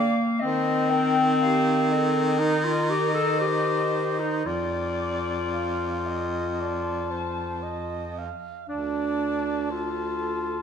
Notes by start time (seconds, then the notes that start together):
Already playing: D3 A#3 D5 F5
0.40 D#3 C4 C5 D#5
0.90 A#4 G5
1.41 G4 F5
1.91 A4 D#5
2.39 D#4 A#4
2.64 F4
2.90 G4
3.14 A4
3.38 G4 C5
4.20 D#4
4.45 F2 F4 D5
5.52 F5
6.06 D#5
6.56 A5
6.60 D5
7.11 C5
7.63 D#5
8.18 F5
8.68 D2 D4 D5 A5
9.71 F4 A4